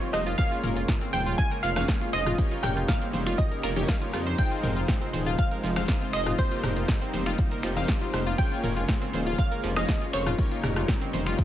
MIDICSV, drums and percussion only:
0, 0, Header, 1, 2, 480
1, 0, Start_track
1, 0, Tempo, 500000
1, 370, Time_signature, 4, 2, 24, 8
1, 10983, End_track
2, 0, Start_track
2, 0, Title_t, "Drums"
2, 13, Note_on_c, 9, 42, 41
2, 109, Note_off_c, 9, 42, 0
2, 129, Note_on_c, 9, 46, 118
2, 130, Note_on_c, 9, 37, 75
2, 135, Note_on_c, 9, 69, 84
2, 225, Note_off_c, 9, 46, 0
2, 226, Note_off_c, 9, 37, 0
2, 231, Note_off_c, 9, 69, 0
2, 253, Note_on_c, 9, 42, 42
2, 259, Note_on_c, 9, 69, 33
2, 349, Note_off_c, 9, 42, 0
2, 355, Note_off_c, 9, 69, 0
2, 369, Note_on_c, 9, 42, 87
2, 370, Note_on_c, 9, 36, 125
2, 375, Note_on_c, 9, 69, 43
2, 465, Note_off_c, 9, 42, 0
2, 466, Note_off_c, 9, 36, 0
2, 471, Note_off_c, 9, 69, 0
2, 494, Note_on_c, 9, 42, 39
2, 590, Note_off_c, 9, 42, 0
2, 609, Note_on_c, 9, 46, 110
2, 610, Note_on_c, 9, 45, 101
2, 615, Note_on_c, 9, 69, 76
2, 705, Note_off_c, 9, 46, 0
2, 706, Note_off_c, 9, 45, 0
2, 711, Note_off_c, 9, 69, 0
2, 734, Note_on_c, 9, 42, 38
2, 740, Note_on_c, 9, 69, 32
2, 830, Note_off_c, 9, 42, 0
2, 836, Note_off_c, 9, 69, 0
2, 849, Note_on_c, 9, 36, 122
2, 849, Note_on_c, 9, 38, 127
2, 849, Note_on_c, 9, 42, 91
2, 850, Note_on_c, 9, 45, 84
2, 855, Note_on_c, 9, 69, 45
2, 945, Note_off_c, 9, 36, 0
2, 945, Note_off_c, 9, 38, 0
2, 945, Note_off_c, 9, 42, 0
2, 946, Note_off_c, 9, 45, 0
2, 951, Note_off_c, 9, 69, 0
2, 973, Note_on_c, 9, 42, 39
2, 979, Note_on_c, 9, 69, 31
2, 1069, Note_off_c, 9, 42, 0
2, 1075, Note_off_c, 9, 69, 0
2, 1088, Note_on_c, 9, 46, 115
2, 1089, Note_on_c, 9, 63, 69
2, 1094, Note_on_c, 9, 69, 78
2, 1184, Note_off_c, 9, 46, 0
2, 1185, Note_off_c, 9, 63, 0
2, 1190, Note_off_c, 9, 69, 0
2, 1212, Note_on_c, 9, 42, 41
2, 1218, Note_on_c, 9, 69, 34
2, 1308, Note_off_c, 9, 42, 0
2, 1314, Note_off_c, 9, 69, 0
2, 1328, Note_on_c, 9, 42, 91
2, 1330, Note_on_c, 9, 36, 127
2, 1334, Note_on_c, 9, 69, 44
2, 1424, Note_off_c, 9, 42, 0
2, 1426, Note_off_c, 9, 36, 0
2, 1430, Note_off_c, 9, 69, 0
2, 1453, Note_on_c, 9, 42, 38
2, 1459, Note_on_c, 9, 69, 30
2, 1549, Note_off_c, 9, 42, 0
2, 1555, Note_off_c, 9, 69, 0
2, 1568, Note_on_c, 9, 46, 116
2, 1574, Note_on_c, 9, 69, 79
2, 1664, Note_off_c, 9, 46, 0
2, 1670, Note_off_c, 9, 69, 0
2, 1692, Note_on_c, 9, 26, 78
2, 1692, Note_on_c, 9, 42, 40
2, 1693, Note_on_c, 9, 37, 69
2, 1693, Note_on_c, 9, 63, 84
2, 1698, Note_on_c, 9, 69, 34
2, 1788, Note_off_c, 9, 26, 0
2, 1788, Note_off_c, 9, 42, 0
2, 1789, Note_off_c, 9, 37, 0
2, 1789, Note_off_c, 9, 63, 0
2, 1794, Note_off_c, 9, 69, 0
2, 1808, Note_on_c, 9, 38, 121
2, 1809, Note_on_c, 9, 36, 121
2, 1809, Note_on_c, 9, 42, 92
2, 1815, Note_on_c, 9, 69, 42
2, 1904, Note_off_c, 9, 38, 0
2, 1905, Note_off_c, 9, 36, 0
2, 1905, Note_off_c, 9, 42, 0
2, 1911, Note_off_c, 9, 69, 0
2, 1932, Note_on_c, 9, 42, 37
2, 2028, Note_off_c, 9, 42, 0
2, 2048, Note_on_c, 9, 26, 70
2, 2048, Note_on_c, 9, 46, 118
2, 2054, Note_on_c, 9, 69, 83
2, 2144, Note_off_c, 9, 26, 0
2, 2144, Note_off_c, 9, 46, 0
2, 2150, Note_off_c, 9, 69, 0
2, 2173, Note_on_c, 9, 42, 38
2, 2174, Note_on_c, 9, 37, 61
2, 2174, Note_on_c, 9, 45, 85
2, 2179, Note_on_c, 9, 69, 32
2, 2269, Note_off_c, 9, 42, 0
2, 2270, Note_off_c, 9, 37, 0
2, 2270, Note_off_c, 9, 45, 0
2, 2275, Note_off_c, 9, 69, 0
2, 2288, Note_on_c, 9, 42, 87
2, 2290, Note_on_c, 9, 36, 127
2, 2294, Note_on_c, 9, 69, 43
2, 2384, Note_off_c, 9, 42, 0
2, 2386, Note_off_c, 9, 36, 0
2, 2390, Note_off_c, 9, 69, 0
2, 2414, Note_on_c, 9, 42, 36
2, 2510, Note_off_c, 9, 42, 0
2, 2528, Note_on_c, 9, 37, 68
2, 2528, Note_on_c, 9, 45, 101
2, 2529, Note_on_c, 9, 46, 115
2, 2535, Note_on_c, 9, 69, 80
2, 2624, Note_off_c, 9, 37, 0
2, 2624, Note_off_c, 9, 45, 0
2, 2625, Note_off_c, 9, 46, 0
2, 2631, Note_off_c, 9, 69, 0
2, 2655, Note_on_c, 9, 42, 39
2, 2661, Note_on_c, 9, 69, 33
2, 2751, Note_off_c, 9, 42, 0
2, 2757, Note_off_c, 9, 69, 0
2, 2769, Note_on_c, 9, 38, 126
2, 2769, Note_on_c, 9, 45, 82
2, 2770, Note_on_c, 9, 36, 126
2, 2770, Note_on_c, 9, 42, 91
2, 2776, Note_on_c, 9, 69, 46
2, 2865, Note_off_c, 9, 38, 0
2, 2865, Note_off_c, 9, 45, 0
2, 2866, Note_off_c, 9, 36, 0
2, 2866, Note_off_c, 9, 42, 0
2, 2872, Note_off_c, 9, 69, 0
2, 2895, Note_on_c, 9, 42, 40
2, 2901, Note_on_c, 9, 69, 32
2, 2991, Note_off_c, 9, 42, 0
2, 2997, Note_off_c, 9, 69, 0
2, 3008, Note_on_c, 9, 63, 65
2, 3010, Note_on_c, 9, 38, 38
2, 3010, Note_on_c, 9, 46, 115
2, 3016, Note_on_c, 9, 69, 84
2, 3104, Note_off_c, 9, 63, 0
2, 3106, Note_off_c, 9, 38, 0
2, 3106, Note_off_c, 9, 46, 0
2, 3112, Note_off_c, 9, 69, 0
2, 3134, Note_on_c, 9, 26, 87
2, 3134, Note_on_c, 9, 42, 40
2, 3141, Note_on_c, 9, 69, 35
2, 3230, Note_off_c, 9, 26, 0
2, 3230, Note_off_c, 9, 42, 0
2, 3237, Note_off_c, 9, 69, 0
2, 3249, Note_on_c, 9, 42, 88
2, 3250, Note_on_c, 9, 36, 127
2, 3255, Note_on_c, 9, 69, 42
2, 3345, Note_off_c, 9, 42, 0
2, 3346, Note_off_c, 9, 36, 0
2, 3351, Note_off_c, 9, 69, 0
2, 3375, Note_on_c, 9, 42, 38
2, 3381, Note_on_c, 9, 69, 31
2, 3471, Note_off_c, 9, 42, 0
2, 3477, Note_off_c, 9, 69, 0
2, 3489, Note_on_c, 9, 26, 94
2, 3489, Note_on_c, 9, 46, 121
2, 3495, Note_on_c, 9, 69, 81
2, 3585, Note_off_c, 9, 26, 0
2, 3585, Note_off_c, 9, 46, 0
2, 3591, Note_off_c, 9, 69, 0
2, 3614, Note_on_c, 9, 42, 38
2, 3614, Note_on_c, 9, 63, 85
2, 3620, Note_on_c, 9, 69, 33
2, 3710, Note_off_c, 9, 42, 0
2, 3710, Note_off_c, 9, 63, 0
2, 3716, Note_off_c, 9, 69, 0
2, 3729, Note_on_c, 9, 38, 121
2, 3729, Note_on_c, 9, 42, 89
2, 3730, Note_on_c, 9, 36, 127
2, 3735, Note_on_c, 9, 69, 45
2, 3825, Note_off_c, 9, 38, 0
2, 3825, Note_off_c, 9, 42, 0
2, 3826, Note_off_c, 9, 36, 0
2, 3831, Note_off_c, 9, 69, 0
2, 3854, Note_on_c, 9, 42, 36
2, 3950, Note_off_c, 9, 42, 0
2, 3969, Note_on_c, 9, 37, 66
2, 3969, Note_on_c, 9, 46, 121
2, 3975, Note_on_c, 9, 69, 80
2, 4065, Note_off_c, 9, 37, 0
2, 4065, Note_off_c, 9, 46, 0
2, 4071, Note_off_c, 9, 69, 0
2, 4094, Note_on_c, 9, 42, 39
2, 4100, Note_on_c, 9, 69, 32
2, 4190, Note_off_c, 9, 42, 0
2, 4196, Note_off_c, 9, 69, 0
2, 4208, Note_on_c, 9, 42, 93
2, 4210, Note_on_c, 9, 36, 122
2, 4214, Note_on_c, 9, 69, 46
2, 4304, Note_off_c, 9, 42, 0
2, 4306, Note_off_c, 9, 36, 0
2, 4310, Note_off_c, 9, 69, 0
2, 4333, Note_on_c, 9, 42, 40
2, 4429, Note_off_c, 9, 42, 0
2, 4448, Note_on_c, 9, 46, 106
2, 4449, Note_on_c, 9, 45, 100
2, 4454, Note_on_c, 9, 69, 79
2, 4544, Note_off_c, 9, 46, 0
2, 4545, Note_off_c, 9, 45, 0
2, 4550, Note_off_c, 9, 69, 0
2, 4572, Note_on_c, 9, 42, 37
2, 4579, Note_on_c, 9, 69, 33
2, 4668, Note_off_c, 9, 42, 0
2, 4675, Note_off_c, 9, 69, 0
2, 4688, Note_on_c, 9, 38, 123
2, 4689, Note_on_c, 9, 42, 94
2, 4689, Note_on_c, 9, 45, 76
2, 4690, Note_on_c, 9, 36, 123
2, 4695, Note_on_c, 9, 69, 49
2, 4784, Note_off_c, 9, 38, 0
2, 4785, Note_off_c, 9, 42, 0
2, 4785, Note_off_c, 9, 45, 0
2, 4786, Note_off_c, 9, 36, 0
2, 4791, Note_off_c, 9, 69, 0
2, 4813, Note_on_c, 9, 42, 38
2, 4819, Note_on_c, 9, 69, 33
2, 4909, Note_off_c, 9, 42, 0
2, 4915, Note_off_c, 9, 69, 0
2, 4929, Note_on_c, 9, 46, 118
2, 4929, Note_on_c, 9, 63, 68
2, 4935, Note_on_c, 9, 69, 87
2, 5025, Note_off_c, 9, 46, 0
2, 5025, Note_off_c, 9, 63, 0
2, 5031, Note_off_c, 9, 69, 0
2, 5054, Note_on_c, 9, 42, 39
2, 5060, Note_on_c, 9, 69, 35
2, 5150, Note_off_c, 9, 42, 0
2, 5156, Note_off_c, 9, 69, 0
2, 5169, Note_on_c, 9, 42, 85
2, 5170, Note_on_c, 9, 36, 127
2, 5175, Note_on_c, 9, 69, 46
2, 5265, Note_off_c, 9, 42, 0
2, 5266, Note_off_c, 9, 36, 0
2, 5271, Note_off_c, 9, 69, 0
2, 5293, Note_on_c, 9, 42, 41
2, 5299, Note_on_c, 9, 69, 31
2, 5389, Note_off_c, 9, 42, 0
2, 5395, Note_off_c, 9, 69, 0
2, 5409, Note_on_c, 9, 46, 108
2, 5415, Note_on_c, 9, 69, 86
2, 5505, Note_off_c, 9, 46, 0
2, 5511, Note_off_c, 9, 69, 0
2, 5533, Note_on_c, 9, 26, 87
2, 5533, Note_on_c, 9, 42, 38
2, 5534, Note_on_c, 9, 37, 62
2, 5534, Note_on_c, 9, 63, 84
2, 5539, Note_on_c, 9, 69, 33
2, 5629, Note_off_c, 9, 26, 0
2, 5629, Note_off_c, 9, 42, 0
2, 5630, Note_off_c, 9, 37, 0
2, 5630, Note_off_c, 9, 63, 0
2, 5635, Note_off_c, 9, 69, 0
2, 5648, Note_on_c, 9, 38, 120
2, 5648, Note_on_c, 9, 42, 91
2, 5650, Note_on_c, 9, 36, 121
2, 5654, Note_on_c, 9, 69, 46
2, 5744, Note_off_c, 9, 38, 0
2, 5744, Note_off_c, 9, 42, 0
2, 5746, Note_off_c, 9, 36, 0
2, 5750, Note_off_c, 9, 69, 0
2, 5772, Note_on_c, 9, 42, 40
2, 5868, Note_off_c, 9, 42, 0
2, 5888, Note_on_c, 9, 26, 78
2, 5888, Note_on_c, 9, 46, 118
2, 5894, Note_on_c, 9, 69, 91
2, 5984, Note_off_c, 9, 26, 0
2, 5984, Note_off_c, 9, 46, 0
2, 5990, Note_off_c, 9, 69, 0
2, 6013, Note_on_c, 9, 42, 40
2, 6014, Note_on_c, 9, 37, 58
2, 6014, Note_on_c, 9, 45, 80
2, 6019, Note_on_c, 9, 69, 35
2, 6109, Note_off_c, 9, 42, 0
2, 6110, Note_off_c, 9, 37, 0
2, 6110, Note_off_c, 9, 45, 0
2, 6115, Note_off_c, 9, 69, 0
2, 6129, Note_on_c, 9, 42, 96
2, 6130, Note_on_c, 9, 36, 113
2, 6135, Note_on_c, 9, 69, 49
2, 6225, Note_off_c, 9, 42, 0
2, 6226, Note_off_c, 9, 36, 0
2, 6231, Note_off_c, 9, 69, 0
2, 6254, Note_on_c, 9, 42, 37
2, 6350, Note_off_c, 9, 42, 0
2, 6369, Note_on_c, 9, 46, 109
2, 6370, Note_on_c, 9, 37, 66
2, 6370, Note_on_c, 9, 45, 94
2, 6375, Note_on_c, 9, 69, 84
2, 6465, Note_off_c, 9, 46, 0
2, 6466, Note_off_c, 9, 37, 0
2, 6466, Note_off_c, 9, 45, 0
2, 6471, Note_off_c, 9, 69, 0
2, 6494, Note_on_c, 9, 42, 38
2, 6500, Note_on_c, 9, 69, 35
2, 6590, Note_off_c, 9, 42, 0
2, 6596, Note_off_c, 9, 69, 0
2, 6608, Note_on_c, 9, 38, 122
2, 6609, Note_on_c, 9, 42, 99
2, 6610, Note_on_c, 9, 36, 124
2, 6610, Note_on_c, 9, 45, 81
2, 6615, Note_on_c, 9, 69, 50
2, 6704, Note_off_c, 9, 38, 0
2, 6705, Note_off_c, 9, 42, 0
2, 6706, Note_off_c, 9, 36, 0
2, 6706, Note_off_c, 9, 45, 0
2, 6711, Note_off_c, 9, 69, 0
2, 6733, Note_on_c, 9, 42, 42
2, 6739, Note_on_c, 9, 69, 35
2, 6829, Note_off_c, 9, 42, 0
2, 6835, Note_off_c, 9, 69, 0
2, 6848, Note_on_c, 9, 38, 37
2, 6849, Note_on_c, 9, 46, 111
2, 6851, Note_on_c, 9, 63, 67
2, 6855, Note_on_c, 9, 69, 89
2, 6944, Note_off_c, 9, 38, 0
2, 6945, Note_off_c, 9, 46, 0
2, 6947, Note_off_c, 9, 63, 0
2, 6951, Note_off_c, 9, 69, 0
2, 6973, Note_on_c, 9, 26, 94
2, 6973, Note_on_c, 9, 42, 42
2, 6979, Note_on_c, 9, 69, 37
2, 7069, Note_off_c, 9, 26, 0
2, 7069, Note_off_c, 9, 42, 0
2, 7075, Note_off_c, 9, 69, 0
2, 7088, Note_on_c, 9, 42, 92
2, 7090, Note_on_c, 9, 36, 120
2, 7094, Note_on_c, 9, 69, 47
2, 7184, Note_off_c, 9, 42, 0
2, 7186, Note_off_c, 9, 36, 0
2, 7190, Note_off_c, 9, 69, 0
2, 7212, Note_on_c, 9, 42, 42
2, 7218, Note_on_c, 9, 69, 33
2, 7308, Note_off_c, 9, 42, 0
2, 7314, Note_off_c, 9, 69, 0
2, 7327, Note_on_c, 9, 26, 95
2, 7327, Note_on_c, 9, 46, 109
2, 7333, Note_on_c, 9, 69, 84
2, 7423, Note_off_c, 9, 26, 0
2, 7423, Note_off_c, 9, 46, 0
2, 7429, Note_off_c, 9, 69, 0
2, 7452, Note_on_c, 9, 42, 43
2, 7455, Note_on_c, 9, 63, 91
2, 7458, Note_on_c, 9, 69, 35
2, 7548, Note_off_c, 9, 42, 0
2, 7551, Note_off_c, 9, 63, 0
2, 7554, Note_off_c, 9, 69, 0
2, 7567, Note_on_c, 9, 38, 111
2, 7568, Note_on_c, 9, 42, 91
2, 7571, Note_on_c, 9, 36, 117
2, 7574, Note_on_c, 9, 69, 48
2, 7663, Note_off_c, 9, 38, 0
2, 7664, Note_off_c, 9, 42, 0
2, 7667, Note_off_c, 9, 36, 0
2, 7670, Note_off_c, 9, 69, 0
2, 7693, Note_on_c, 9, 42, 37
2, 7789, Note_off_c, 9, 42, 0
2, 7809, Note_on_c, 9, 46, 113
2, 7811, Note_on_c, 9, 37, 66
2, 7815, Note_on_c, 9, 69, 93
2, 7905, Note_off_c, 9, 46, 0
2, 7907, Note_off_c, 9, 37, 0
2, 7911, Note_off_c, 9, 69, 0
2, 7933, Note_on_c, 9, 42, 40
2, 7939, Note_on_c, 9, 69, 37
2, 8029, Note_off_c, 9, 42, 0
2, 8035, Note_off_c, 9, 69, 0
2, 8049, Note_on_c, 9, 42, 96
2, 8050, Note_on_c, 9, 36, 117
2, 8055, Note_on_c, 9, 69, 46
2, 8145, Note_off_c, 9, 42, 0
2, 8146, Note_off_c, 9, 36, 0
2, 8151, Note_off_c, 9, 69, 0
2, 8174, Note_on_c, 9, 42, 42
2, 8270, Note_off_c, 9, 42, 0
2, 8290, Note_on_c, 9, 45, 96
2, 8290, Note_on_c, 9, 46, 103
2, 8296, Note_on_c, 9, 69, 84
2, 8386, Note_off_c, 9, 45, 0
2, 8386, Note_off_c, 9, 46, 0
2, 8392, Note_off_c, 9, 69, 0
2, 8414, Note_on_c, 9, 42, 39
2, 8421, Note_on_c, 9, 69, 35
2, 8510, Note_off_c, 9, 42, 0
2, 8517, Note_off_c, 9, 69, 0
2, 8530, Note_on_c, 9, 36, 120
2, 8530, Note_on_c, 9, 38, 125
2, 8530, Note_on_c, 9, 42, 102
2, 8530, Note_on_c, 9, 45, 75
2, 8537, Note_on_c, 9, 69, 48
2, 8626, Note_off_c, 9, 36, 0
2, 8626, Note_off_c, 9, 38, 0
2, 8626, Note_off_c, 9, 42, 0
2, 8626, Note_off_c, 9, 45, 0
2, 8633, Note_off_c, 9, 69, 0
2, 8654, Note_on_c, 9, 42, 44
2, 8661, Note_on_c, 9, 69, 35
2, 8750, Note_off_c, 9, 42, 0
2, 8757, Note_off_c, 9, 69, 0
2, 8770, Note_on_c, 9, 46, 106
2, 8770, Note_on_c, 9, 63, 67
2, 8776, Note_on_c, 9, 69, 88
2, 8866, Note_off_c, 9, 46, 0
2, 8866, Note_off_c, 9, 63, 0
2, 8872, Note_off_c, 9, 69, 0
2, 8895, Note_on_c, 9, 42, 43
2, 8901, Note_on_c, 9, 69, 38
2, 8991, Note_off_c, 9, 42, 0
2, 8997, Note_off_c, 9, 69, 0
2, 9010, Note_on_c, 9, 36, 123
2, 9010, Note_on_c, 9, 42, 95
2, 9017, Note_on_c, 9, 69, 48
2, 9106, Note_off_c, 9, 36, 0
2, 9106, Note_off_c, 9, 42, 0
2, 9113, Note_off_c, 9, 69, 0
2, 9135, Note_on_c, 9, 42, 43
2, 9141, Note_on_c, 9, 69, 34
2, 9231, Note_off_c, 9, 42, 0
2, 9237, Note_off_c, 9, 69, 0
2, 9249, Note_on_c, 9, 46, 109
2, 9255, Note_on_c, 9, 69, 84
2, 9345, Note_off_c, 9, 46, 0
2, 9351, Note_off_c, 9, 69, 0
2, 9374, Note_on_c, 9, 26, 87
2, 9376, Note_on_c, 9, 37, 65
2, 9376, Note_on_c, 9, 63, 91
2, 9380, Note_on_c, 9, 69, 37
2, 9470, Note_off_c, 9, 26, 0
2, 9472, Note_off_c, 9, 37, 0
2, 9472, Note_off_c, 9, 63, 0
2, 9476, Note_off_c, 9, 69, 0
2, 9490, Note_on_c, 9, 36, 113
2, 9490, Note_on_c, 9, 38, 117
2, 9490, Note_on_c, 9, 42, 98
2, 9496, Note_on_c, 9, 69, 48
2, 9586, Note_off_c, 9, 36, 0
2, 9586, Note_off_c, 9, 38, 0
2, 9586, Note_off_c, 9, 42, 0
2, 9592, Note_off_c, 9, 69, 0
2, 9613, Note_on_c, 9, 42, 40
2, 9709, Note_off_c, 9, 42, 0
2, 9728, Note_on_c, 9, 26, 73
2, 9728, Note_on_c, 9, 46, 117
2, 9734, Note_on_c, 9, 69, 90
2, 9824, Note_off_c, 9, 26, 0
2, 9824, Note_off_c, 9, 46, 0
2, 9830, Note_off_c, 9, 69, 0
2, 9853, Note_on_c, 9, 42, 42
2, 9854, Note_on_c, 9, 37, 59
2, 9854, Note_on_c, 9, 45, 76
2, 9860, Note_on_c, 9, 69, 38
2, 9949, Note_off_c, 9, 42, 0
2, 9950, Note_off_c, 9, 37, 0
2, 9950, Note_off_c, 9, 45, 0
2, 9956, Note_off_c, 9, 69, 0
2, 9969, Note_on_c, 9, 42, 98
2, 9970, Note_on_c, 9, 36, 120
2, 9975, Note_on_c, 9, 69, 47
2, 10065, Note_off_c, 9, 42, 0
2, 10066, Note_off_c, 9, 36, 0
2, 10071, Note_off_c, 9, 69, 0
2, 10094, Note_on_c, 9, 42, 41
2, 10100, Note_on_c, 9, 69, 33
2, 10190, Note_off_c, 9, 42, 0
2, 10196, Note_off_c, 9, 69, 0
2, 10209, Note_on_c, 9, 46, 102
2, 10210, Note_on_c, 9, 37, 71
2, 10210, Note_on_c, 9, 45, 92
2, 10215, Note_on_c, 9, 69, 85
2, 10305, Note_off_c, 9, 46, 0
2, 10306, Note_off_c, 9, 37, 0
2, 10306, Note_off_c, 9, 45, 0
2, 10311, Note_off_c, 9, 69, 0
2, 10333, Note_on_c, 9, 37, 66
2, 10333, Note_on_c, 9, 42, 39
2, 10339, Note_on_c, 9, 69, 33
2, 10429, Note_off_c, 9, 37, 0
2, 10429, Note_off_c, 9, 42, 0
2, 10435, Note_off_c, 9, 69, 0
2, 10448, Note_on_c, 9, 38, 127
2, 10449, Note_on_c, 9, 42, 103
2, 10449, Note_on_c, 9, 45, 77
2, 10450, Note_on_c, 9, 36, 123
2, 10455, Note_on_c, 9, 69, 51
2, 10544, Note_off_c, 9, 38, 0
2, 10545, Note_off_c, 9, 42, 0
2, 10545, Note_off_c, 9, 45, 0
2, 10546, Note_off_c, 9, 36, 0
2, 10551, Note_off_c, 9, 69, 0
2, 10573, Note_on_c, 9, 42, 45
2, 10579, Note_on_c, 9, 69, 34
2, 10669, Note_off_c, 9, 42, 0
2, 10675, Note_off_c, 9, 69, 0
2, 10689, Note_on_c, 9, 38, 41
2, 10689, Note_on_c, 9, 63, 70
2, 10690, Note_on_c, 9, 46, 107
2, 10696, Note_on_c, 9, 69, 85
2, 10785, Note_off_c, 9, 38, 0
2, 10785, Note_off_c, 9, 63, 0
2, 10786, Note_off_c, 9, 46, 0
2, 10792, Note_off_c, 9, 69, 0
2, 10815, Note_on_c, 9, 26, 87
2, 10815, Note_on_c, 9, 42, 45
2, 10821, Note_on_c, 9, 69, 37
2, 10911, Note_off_c, 9, 26, 0
2, 10911, Note_off_c, 9, 42, 0
2, 10917, Note_off_c, 9, 69, 0
2, 10930, Note_on_c, 9, 36, 127
2, 10930, Note_on_c, 9, 42, 98
2, 10936, Note_on_c, 9, 69, 47
2, 10983, Note_off_c, 9, 36, 0
2, 10983, Note_off_c, 9, 42, 0
2, 10983, Note_off_c, 9, 69, 0
2, 10983, End_track
0, 0, End_of_file